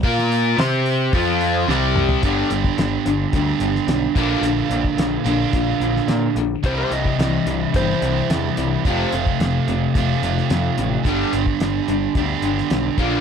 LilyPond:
<<
  \new Staff \with { instrumentName = "Electric slide guitar" } { \time 4/4 \key g \mixolydian \tempo 4 = 109 r1 | r1 | r1 | c''16 c''16 ees''4. c''4 r4 |
r1 | r1 | }
  \new Staff \with { instrumentName = "Overdriven electric guitar" } { \time 4/4 \key g \mixolydian <bes f' bes'>4 <c' g' c''>4 <f c' f'>4 <c g c'>4 | <g, d g b d' g'>2 <g, d g b d' g'>4. <bes, d bes d' f'>8~ | <bes, d bes d' f'>4. <bes, d bes d' f'>2 r8 | <c e g c' e'>2 <c e g c' e'>2 |
<f, c f a c' f'>2 <f, c f a c' f'>2 | <g, d g b d' g'>2 <g, d g b d' g'>4. <bes, d bes d' f'>8 | }
  \new Staff \with { instrumentName = "Overdriven electric guitar" } { \clef bass \time 4/4 \key g \mixolydian <bes f' bes'>4 <c' g' c''>4 <f c' f'>4 <c g c'>4 | <g, d g>8 <g, d>8 <g, d>8 <g, d>8 <g, d>8 <g, d>8 <g, d>8 <bes, d bes>8 | <bes, d>8 <bes, d>8 <bes, d>8 <bes, d>8 <bes, d>8 <bes, d>8 <bes, d>8 <bes, d>8 | <c e g>8 <c e>8 <c e>8 <c e>8 <c e>8 <c e>8 <c e>8 <c e>8 |
<f, c f>8 <f, c>8 <f, c>8 <f, c>8 <f, c>8 <f, c>8 <f, c>8 <f, c>8 | <g, d g>8 <g, d>8 <g, d>8 <g, d>8 <g, d>8 <g, d>8 <g, d>8 <bes, d bes>8 | }
  \new Staff \with { instrumentName = "Picked electric bass" } { \clef bass \time 4/4 \key g \mixolydian bes,4 c4 f,4 c,4 | g,,8 g,,8 g,,8 g,,8 d,8 g,,8 b,,8 bes,,8 | bes,,8 bes,,8 bes,,8 bes,,8 bes,,8 bes,,8 bes,8 bes,,8 | c,8 c,8 c,8 c,8 g,,8 c,8 e,8 c,8 |
f,,8 f,,8 f,,8 f,,8 f,,8 f,,8 f,8 a,,8 | g,,8 g,,8 g,,8 g,,8 d,8 g,,8 b,,8 bes,,8 | }
  \new DrumStaff \with { instrumentName = "Drums" } \drummode { \time 4/4 <hho bd>16 sn16 hho8 <hho sn>8 hho8 <hho bd>8 hho8 sn8 toml16 tomfh16 | <hh bd>8 hh16 bd16 <hh sn>8 hh8 <hh bd>8 hh16 sn16 <hh sn>8 <hh bd>8 | hh8 hh16 bd16 <hh sn>8 hh8 <hh bd>8 hh16 sn16 <hh sn>8 hh8 | <hh bd>8 hh16 bd16 <hh sn>8 hh8 <hh bd>8 hh8 <hh sn>8 hh8 |
<hh bd>8 hh16 bd16 <hh sn>8 hh8 <hh bd>8 hh16 sn16 <hh sn>8 hh8 | <hh bd>8 hh16 bd16 <hh sn>8 hh8 <hh bd>8 hh16 sn16 <hh sn>8 <hh bd>8 | }
>>